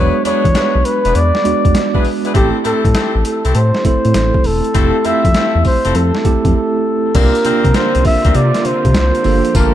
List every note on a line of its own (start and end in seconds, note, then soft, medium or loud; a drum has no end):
0.00 0.12 E1 loud
0.00 1.01 G#3 medium
0.00 0.17 B3 medium
0.00 0.98 B3 medium
0.00 0.17 D4 medium
0.00 0.98 D4 medium
0.00 0.17 E4 medium
0.00 0.98 F#4 medium
0.00 0.17 G#4 medium
0.00 0.17 B4 medium
0.00 0.25 C#5 loud
0.25 0.33 E2 soft
0.25 0.47 B3 medium
0.25 0.47 D4 medium
0.25 0.47 E4 medium
0.25 0.47 G#4 medium
0.25 0.47 B4 medium
0.25 0.87 C#5 loud
0.25 closed hi-hat medium
0.45 0.53 E2 loud
0.45 kick medium
0.45 closed hi-hat medium
0.55 0.77 B3 medium
0.55 0.77 D4 medium
0.55 0.77 E4 medium
0.55 0.77 G#4 medium
0.55 0.77 B4 medium
0.55 snare loud
0.55 closed hi-hat medium
0.75 0.83 B1 medium
0.85 1.17 B4 loud
0.85 closed hi-hat medium
1.04 1.13 E1 medium
1.04 1.19 B3 medium
1.04 1.19 D4 medium
1.04 1.19 E4 medium
1.04 1.19 G#4 medium
1.04 1.19 B4 medium
1.04 closed hi-hat medium
1.15 1.32 E2 loud
1.15 2.05 D5 loud
1.15 closed hi-hat medium
1.35 snare medium
1.44 1.53 E2 soft
1.44 2.24 G#3 medium
1.44 2.25 B3 medium
1.44 2.25 D4 medium
1.44 2.25 F#4 medium
1.44 closed hi-hat medium
1.65 1.73 E2 loud
1.65 kick medium
1.65 closed hi-hat soft
1.75 snare loud
1.75 closed hi-hat medium
1.95 2.09 B3 medium
1.95 2.09 D4 medium
1.95 2.09 E4 medium
1.95 2.09 G#4 medium
1.95 2.09 B4 medium
1.95 kick medium
2.05 open hi-hat medium
2.24 2.39 B3 medium
2.24 2.39 D4 medium
2.24 2.33 E4 medium
2.24 2.39 G#4 medium
2.24 2.39 B4 medium
2.24 closed hi-hat soft
2.34 2.52 A1 loud
2.34 3.38 A3 medium
2.34 2.57 A3 medium
2.34 2.57 C4 medium
2.34 3.38 C4 medium
2.34 2.57 E4 medium
2.34 3.38 E4 medium
2.34 2.57 G4 medium
2.34 3.38 G4 medium
2.34 2.49 G4 medium
2.34 2.57 A4 loud
2.34 kick loud
2.34 closed hi-hat medium
2.65 2.73 A2 soft
2.65 2.87 A3 medium
2.65 2.87 C4 medium
2.65 2.87 E4 medium
2.65 2.87 G4 medium
2.65 2.87 A4 medium
2.65 3.21 A4 medium
2.65 closed hi-hat medium
2.85 2.93 A2 medium
2.85 kick loud
2.85 closed hi-hat soft
2.95 3.17 A3 medium
2.95 3.17 C4 medium
2.95 3.17 E4 medium
2.95 3.17 G4 medium
2.95 3.17 A4 medium
2.95 snare loud
2.95 closed hi-hat medium
3.15 3.23 A1 medium
3.25 3.57 A4 medium
3.25 closed hi-hat medium
3.45 3.53 C2 medium
3.45 3.59 A3 medium
3.45 3.59 C4 medium
3.45 3.59 E4 medium
3.45 3.59 G4 medium
3.45 3.59 A4 medium
3.45 closed hi-hat medium
3.55 3.72 A2 loud
3.55 3.85 C5 loud
3.55 closed hi-hat medium
3.75 snare medium
3.85 3.93 A2 soft
3.85 4.65 A3 medium
3.85 4.65 C4 medium
3.85 4.65 E4 medium
3.85 4.65 A4 medium
3.85 4.48 C5 medium
3.85 kick medium
3.85 closed hi-hat medium
4.05 4.13 A2 loud
4.05 closed hi-hat soft
4.14 4.32 A1 loud
4.14 snare loud
4.14 closed hi-hat medium
4.34 kick loud
4.44 4.62 E1 medium
4.44 5.08 A4 loud
4.44 open hi-hat medium
4.64 closed hi-hat soft
4.75 4.92 F1 loud
4.75 5.78 A3 medium
4.75 4.97 A3 loud
4.75 4.97 C4 medium
4.75 5.78 C4 medium
4.75 4.97 E4 medium
4.75 5.78 E4 medium
4.75 4.97 F4 medium
4.75 5.79 G4 medium
4.75 4.97 A4 loud
4.75 kick loud
4.75 closed hi-hat medium
5.05 5.13 F2 soft
5.05 5.27 A3 medium
5.05 5.27 C4 medium
5.05 5.27 E4 medium
5.05 5.27 F4 medium
5.05 5.27 A4 medium
5.05 5.65 E5 loud
5.05 closed hi-hat medium
5.25 5.33 F2 loud
5.25 kick loud
5.25 closed hi-hat medium
5.34 5.57 A3 medium
5.34 5.57 C4 medium
5.34 5.57 E4 medium
5.34 5.57 F4 medium
5.34 5.57 A4 medium
5.34 snare loud
5.34 closed hi-hat medium
5.55 5.64 E2 medium
5.65 5.98 C5 loud
5.65 kick medium
5.65 open hi-hat medium
5.85 5.93 F1 medium
5.85 5.99 A3 medium
5.85 5.99 C4 medium
5.85 5.99 E4 medium
5.85 5.99 F4 medium
5.85 5.99 A4 medium
5.85 closed hi-hat medium
5.95 6.12 F2 loud
5.95 6.55 A4 loud
5.95 closed hi-hat medium
6.15 snare medium
6.25 6.33 F2 soft
6.25 7.05 A3 medium
6.25 7.05 C4 medium
6.25 7.05 E4 medium
6.25 7.05 G4 medium
6.25 kick medium
6.25 closed hi-hat medium
6.45 6.53 F2 medium
6.45 kick medium
6.45 closed hi-hat soft
6.56 7.17 A4 medium
7.15 7.32 C2 loud
7.15 9.23 D3 medium
7.15 9.74 A#3 medium
7.15 7.42 A#3 medium
7.15 7.37 A#3 medium
7.15 7.37 C4 medium
7.15 9.23 C4 medium
7.15 7.37 D4 medium
7.15 7.42 D4 medium
7.15 9.23 F4 medium
7.15 7.37 F4 medium
7.15 7.42 F4 medium
7.15 7.42 G4 medium
7.15 7.37 A#4 medium
7.15 7.77 A#4 loud
7.15 kick loud
7.15 closed hi-hat medium
7.15 crash medium
7.35 closed hi-hat medium
7.45 7.53 C3 medium
7.45 8.48 A#3 medium
7.45 7.67 A#3 medium
7.45 7.67 C4 medium
7.45 7.67 D4 medium
7.45 8.48 D4 medium
7.45 7.67 F4 medium
7.45 8.48 F4 medium
7.45 7.67 A#4 medium
7.45 8.49 A#4 medium
7.45 closed hi-hat medium
7.64 7.73 C3 loud
7.64 kick loud
7.64 closed hi-hat medium
7.74 7.97 A#3 medium
7.74 7.97 C4 medium
7.74 7.97 D4 medium
7.74 7.97 F4 medium
7.74 7.97 A#4 medium
7.74 8.05 C5 loud
7.74 snare loud
7.74 closed hi-hat medium
7.95 8.03 C2 medium
7.95 closed hi-hat medium
8.05 8.37 E5 loud
8.05 kick loud
8.05 open hi-hat medium
8.25 8.33 D2 medium
8.25 8.39 A#3 medium
8.25 8.39 C4 medium
8.25 8.39 D4 medium
8.25 8.39 F4 medium
8.25 8.39 A#4 medium
8.25 kick loud
8.25 closed hi-hat medium
8.35 8.52 C3 medium
8.35 8.67 D5 loud
8.35 closed hi-hat medium
8.55 snare medium
8.55 closed hi-hat soft
8.65 8.73 C3 soft
8.65 9.58 C5 loud
8.65 closed hi-hat medium
8.85 8.93 C3 loud
8.85 kick loud
8.85 closed hi-hat soft
8.94 9.12 C2 loud
8.94 snare loud
8.94 closed hi-hat medium
9.15 closed hi-hat soft
9.24 9.42 G1 loud
9.24 9.74 F3 medium
9.24 9.74 G3 medium
9.24 9.74 A#3 medium
9.24 9.74 D4 medium
9.24 9.74 F4 medium
9.24 9.74 G4 medium
9.24 9.74 A4 loud
9.24 open hi-hat medium
9.45 closed hi-hat medium
9.55 9.72 G1 loud
9.55 9.74 A3 medium
9.55 9.74 A#3 medium
9.55 9.74 F4 medium
9.55 9.74 G4 medium
9.55 9.74 A4 loud
9.55 9.74 A#4 loud
9.55 kick loud
9.55 closed hi-hat medium
9.55 tambourine medium